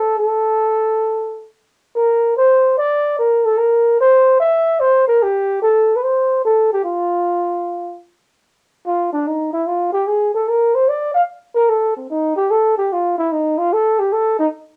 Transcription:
Already playing: A4
0.18 A4
1.95 A#4
2.37 C5
2.77 D5
3.18 A#4
3.45 A4
3.58 A#4
4.00 C5
4.40 E5
4.80 C5
5.08 A#4
5.23 G4
5.62 A4
5.96 B4
6.03 C5
6.45 A4
6.73 G4
6.84 F4
8.86 F4
9.13 D4
9.27 D#4
9.53 E4
9.66 F4
9.93 G4
10.07 G#4
10.34 A4
10.48 A#4
10.75 C5
10.89 D5
11.14 F5
11.55 A#4
11.69 A4
11.97 C4
12.10 D#4
12.36 G4
12.51 A4
12.78 G4
12.93 F4
13.18 E4
13.32 D#4
13.58 F4
13.73 A4
13.99 G4
14.12 A4
14.39 D#4

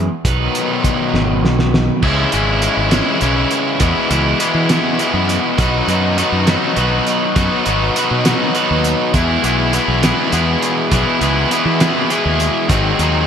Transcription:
Already playing: E2 E3 G#3 B3 E4 G#4
0.25 B1 B2 D#3 F#3 B3 D#4 B4, kick, closed hi-hat
0.55 closed hi-hat
0.84 kick, closed hi-hat
1.14 G#1, snare
1.44 B1, snare
1.59 snare
1.74 snare
2.02 C#2 C#3 E3 G#3 C#4 E4 G#4, kick, crash
2.32 G#1 C#3 E3 G#3 C#4 E4 G#4, closed hi-hat
2.62 C#3 E3 G#3 C#4 E4 G#4, closed hi-hat
2.77 G#1
2.91 C#3 E3 G#3 C#4 E4 G#4, snare, closed hi-hat
3.21 B1 C#3 E3 G#3 C#4 E4 G#4, closed hi-hat
3.51 closed hi-hat
3.80 E2 B2 E3 G#3 B3 E4 G#4, kick, closed hi-hat
4.09 C#2 E2 B2 E3 G#3 B3 E4 G#4, closed hi-hat
4.39 E2 B2 E3 G#3 B3 E4 G#4, closed hi-hat
4.55 E3
4.69 E2 B2 E3 G#3 B3 E4 G#4, snare, closed hi-hat
4.99 E2 B2 E3 G#3 B3 E4 G#4, closed hi-hat
5.14 F#2
5.29 closed hi-hat
5.57 B1 B2 D#3 F#3 B3 D#4 F#4 B4, kick, closed hi-hat
5.87 F#2 B2 D#3 F#3 B3 D#4 F#4 B4, closed hi-hat
6.16 B2 D#3 F#3 B3 D#4 F#4 B4, closed hi-hat
6.32 F#2
6.47 B2 D#3 F#3 B3 D#4 F#4 B4, snare, closed hi-hat
6.76 B1 B2 D#3 F#3 B3 D#4 F#4 B4, closed hi-hat
7.07 closed hi-hat
7.35 F#2 B2 D#3 F#3 B3 D#4 F#4 B4, kick, closed hi-hat
7.65 G#1 B2 D#3 F#3 B3 D#4 F#4 B4, closed hi-hat
7.95 B2 D#3 F#3 B3 D#4 F#4 B4, closed hi-hat
8.11 B2
8.24 B2 D#3 F#3 B3 D#4 F#4 B4, snare, closed hi-hat
8.54 B2 D#3 F#3 B3 D#4 F#4 B4, closed hi-hat
8.71 D#2
8.84 closed hi-hat
9.13 E2 B2 E3 G#3 B3 E4 G#4, kick, closed hi-hat
9.43 B1 E2 B2 E3 G#3 B3 E4 G#4, closed hi-hat
9.72 E2 B2 E3 G#3 B3 E4 G#4, closed hi-hat
9.88 B1
10.01 E2 B2 E3 G#3 B3 E4 G#4, snare, closed hi-hat
10.32 E2 B2 E3 G#3 B3 E4 G#4, closed hi-hat
10.62 closed hi-hat
10.91 B1 E2 B2 E3 G#3 B3 E4 G#4, kick, closed hi-hat
11.21 C#2 E2 B2 E3 G#3 B3 E4 G#4, closed hi-hat
11.50 E2 B2 E3 G#3 B3 E4 G#4, closed hi-hat
11.65 E3
11.80 E2 B2 E3 G#3 B3 E4 G#4, snare, closed hi-hat
12.10 E2 B2 E3 G#3 B3 E4 G#4, closed hi-hat
12.26 D#2
12.40 closed hi-hat
12.69 G#1 G#2 D#3 F#3 C4 D#4 F#4 G#4, kick, closed hi-hat
12.99 D#2 G#2 D#3 F#3 C4 D#4 F#4 G#4, closed hi-hat

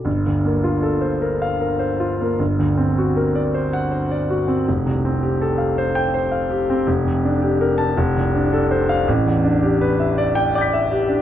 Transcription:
0.05 G1
0.26 D2
0.45 A#3
0.64 F4
0.83 A4
1.01 C5
1.22 A#4
1.42 F5
1.61 A#4
1.79 C5
2.00 F4
2.21 A#3
2.39 G1
2.59 D2
2.78 C4
2.98 F#4
3.17 A#4
3.35 D5
3.54 C5
3.73 F#5
3.91 C5
4.11 D5
4.30 F#4
4.48 C4
4.68 F1
4.86 C2
5.05 C4
5.23 G4
5.42 A4
5.58 F5
5.78 C5
5.95 G5
6.14 C5
6.32 F5
6.50 G4
6.70 C4
6.87 F1
7.05 F2
7.25 D4
7.42 G4
7.61 A#4
7.78 A5
7.97 F1
8.16 C2
8.35 D4
8.53 A4
8.71 C5
8.89 F5
9.08 A1
9.26 E2
9.44 D4
9.63 G4
9.81 B4
10.00 E5
10.18 D5
10.35 G5
10.55 D5 D6 G6
10.61 B6
10.73 E5
10.91 G4
11.09 D4

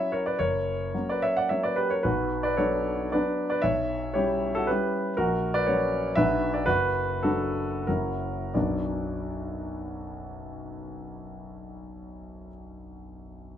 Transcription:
Already playing: F#3 C#4 E4 C#5 E5
0.12 A#4 C#5
0.26 B4 D5
0.39 F#1 A#4 C#5
0.94 F#3 A#3 C#4
1.09 B4 D5
1.22 C#5 E5
1.37 D5 F#5
1.49 F#3 A#3 C#4 C#5 E5
1.63 B4 D5
1.76 G4 B4
1.90 A#4 C#5
2.03 B1 F#4 B4
2.43 B4 D5
2.57 F#3 B3 D4 A4 C#5
3.12 F#3 B3 D4 B4 D5
3.50 B4 D5
3.62 B1 C#5 E5
4.14 G3 C#4 E4 G4 C#5
4.55 F#4 A4
4.67 G3 C#4 E4 G4 B4
5.17 A#1 F#4 A#4
5.54 B4 D5
5.66 F#3 C#4 F#4 A#4 C#5
6.15 B1 F#3 D4 F#4 B4 E5
6.54 B4 D5
6.66 F#1 F#4 B4
7.23 F#3 D4 F#4 A4
7.87 F#1 F#3 C#4 E4 F#4 A#4
8.54 B1 F#2 F#3 B3 D4 F#4 D5

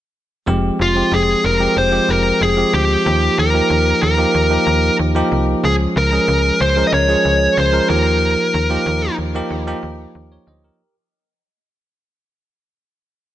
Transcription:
0.46 F1 F3 G#3 C4 G4
0.79 F1 F4
0.95 F3 G#3 C4 G4
1.12 F1 G#4
1.44 F1 A#4
1.59 F3 G#3 C4 G4
1.76 F1 C5
1.92 F3 G#3 C4 G4
2.09 F1 A#4
2.41 F1 G#4
2.57 F3 G#3 C4 G4
2.73 D2 G4
3.05 D#2 F3 A#3 D#4 G4
3.38 D#2 A#4
3.54 F3 A#3 D#4 G4
3.70 D#2
4.02 D#2 A#4
4.17 F3 A#3 D#4 G4
4.34 D#2
4.50 F3 A#3 D#4 G4
4.67 D#2
4.99 D#2
5.15 F3 A#3 D#4 G4
5.32 C2
5.63 C#2 F3 G#3 C#4 G#4
5.96 C#2 A#4
6.11 F3 G#3 C#4 G#4
6.28 C#2
6.60 C#2 C5
6.76 F3 G#3 C#4 A#4
6.87 D#5
6.92 C#2 C#5
7.08 F3 G#3 C#4 G#4
7.25 C#2
7.57 C#2 C5
7.73 F3 G#3 C#4 A#4
7.88 D#2 F3 A#3 D#4 G4 A#4
8.54 D#2
8.70 F3 A#3 D#4 G4
8.86 D#2
9.18 D#2
9.34 F3 A#3 D#4 G4
9.50 D#2
9.67 F3 A#3 D#4 G4
9.83 D#2
10.15 D#2
10.32 A#4 C#5
10.47 D2 C5 D#5
10.64 G4 A#4

